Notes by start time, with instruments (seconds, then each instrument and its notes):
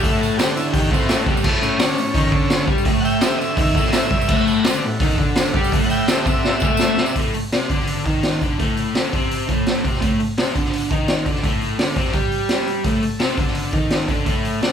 Already playing: transistor combo organ A4 C#5 F#5
0.03 overdriven electric guitar A2 A3, transistor combo organ E5, kick, open hi-hat, tambourine
0.14 tambourine
0.21 transistor combo organ A4, tambourine
0.32 tambourine
0.37 overdriven electric guitar D3 D4, transistor combo organ G4, snare, open hi-hat, tambourine
0.50 tambourine
0.56 transistor combo organ E4, tambourine
0.73 overdriven electric guitar D#3 D#4, transistor combo organ G4, kick, open hi-hat
0.77 tambourine
0.91 overdriven electric guitar A2 A3, transistor combo organ C4, kick, tambourine
1.01 snare, tambourine
1.09 transistor combo organ A3, snare, open hi-hat, tambourine
1.26 overdriven electric guitar G2 G3, transistor combo organ G3, kick, tambourine
1.37 tambourine
1.43 overdriven electric guitar A2 A3, transistor combo organ A3 A4 C#5, kick, crash
1.47 transistor combo organ E5
1.56 tambourine
1.62 transistor combo organ C#4, tambourine
1.71 tambourine
1.79 overdriven electric guitar D3 D4, snare, open hi-hat, tambourine
1.96 overdriven electric guitar A2, tambourine
2.14 overdriven electric guitar D#3 D#4, kick, open hi-hat, tambourine
2.24 tambourine
2.31 overdriven electric guitar D3 D4, kick
2.50 snare, open hi-hat, tambourine
2.67 overdriven electric guitar G3 G4, kick, tambourine
2.78 tambourine
2.85 overdriven electric guitar A2 A3, kick, open hi-hat
2.96 tambourine
3.00 transistor combo organ F#5
3.05 transistor combo organ E5 G5, tambourine
3.14 tambourine
3.21 overdriven electric guitar D3 D4, transistor combo organ G4 E5, snare, open hi-hat, tambourine
3.38 transistor combo organ D#5 E5, tambourine
3.57 overdriven electric guitar D#3 D#4, kick, open hi-hat, tambourine
3.69 tambourine
3.75 overdriven electric guitar A2 A3, kick, tambourine
3.84 snare
3.93 snare, open hi-hat, tambourine
4.11 overdriven electric guitar G2 G3, kick
4.22 tambourine
4.28 overdriven electric guitar A2 A3, transistor combo organ A4 E5 F#5, kick, crash
4.38 tambourine
4.48 tambourine
4.64 overdriven electric guitar D3 D4, snare, open hi-hat, tambourine
4.76 tambourine
4.83 overdriven electric guitar A2
5.00 overdriven electric guitar D#3 D#4, kick, open hi-hat, tambourine
5.12 tambourine
5.18 overdriven electric guitar D3 D4, kick
5.36 snare, open hi-hat, tambourine
5.53 overdriven electric guitar G3 G4, kick, tambourine
5.64 tambourine
5.72 overdriven electric guitar A2 A3, kick, open hi-hat
5.82 transistor combo organ F#5, tambourine
5.89 transistor combo organ E5 G5, tambourine
6.08 overdriven electric guitar D3 D4, transistor combo organ G4 E5, snare, open hi-hat, tambourine
6.18 tambourine
6.25 overdriven electric guitar C3 C4, transistor combo organ D#5, kick, tambourine
6.30 transistor combo organ E5
6.44 snare, tambourine
6.53 tambourine
6.60 overdriven electric guitar A3, kick, tambourine
6.64 overdriven electric guitar A4
6.77 snare, tambourine
6.96 overdriven electric guitar C3 C4, snare, tambourine
7.06 tambourine
7.16 overdriven electric guitar A2 A3, kick, open hi-hat
7.34 muted overdriven electric guitar stroke, open hi-hat
7.52 overdriven electric guitar C3 C4, snare, open hi-hat
7.70 overdriven electric guitar D3 D4, kick, open hi-hat
7.79 snare
7.87 open hi-hat
8.05 overdriven electric guitar D#3 D#4, kick, open hi-hat
8.23 snare, open hi-hat
8.41 overdriven electric guitar D3 D4, kick, open hi-hat
8.59 overdriven electric guitar A2 A3, kick, open hi-hat
8.77 open hi-hat
8.95 overdriven electric guitar D3 D4, snare, open hi-hat
9.13 overdriven electric guitar C3 C4, kick, open hi-hat
9.31 open hi-hat
9.48 overdriven electric guitar A2 A3, kick, open hi-hat
9.66 snare, open hi-hat
9.85 overdriven electric guitar C3 C4, kick, open hi-hat
9.94 snare
10.01 overdriven electric guitar A2 A3, kick, open hi-hat
10.20 muted overdriven electric guitar stroke, open hi-hat
10.38 overdriven electric guitar C3 C4, snare, open hi-hat
10.54 overdriven electric guitar D3 D4, kick, open hi-hat
10.65 snare
10.73 open hi-hat
10.91 overdriven electric guitar D#3 D#4, kick, open hi-hat
11.08 snare, open hi-hat
11.26 overdriven electric guitar D3 D4, kick, open hi-hat
11.35 snare
11.43 overdriven electric guitar A2 A3, kick, open hi-hat
11.61 open hi-hat
11.79 overdriven electric guitar D3 D4, snare, open hi-hat
11.96 overdriven electric guitar C3 C4, kick, open hi-hat
12.04 snare
12.13 overdriven electric guitar G3 G4, kick, open hi-hat
12.32 open hi-hat
12.49 snare, open hi-hat
12.67 open hi-hat
12.83 overdriven electric guitar A2 A3, transistor combo organ A4, kick, open hi-hat
13.02 muted overdriven electric guitar stroke, open hi-hat
13.20 overdriven electric guitar C3 C4, snare, open hi-hat
13.38 overdriven electric guitar D3 D4, kick, open hi-hat
13.47 snare
13.55 open hi-hat
13.72 overdriven electric guitar D#3 D#4, kick, open hi-hat
13.90 snare, open hi-hat
14.08 overdriven electric guitar D3 D4, kick, open hi-hat
14.25 overdriven electric guitar A2 A3, kick, open hi-hat
14.45 open hi-hat
14.62 overdriven electric guitar D3 D4, snare, open hi-hat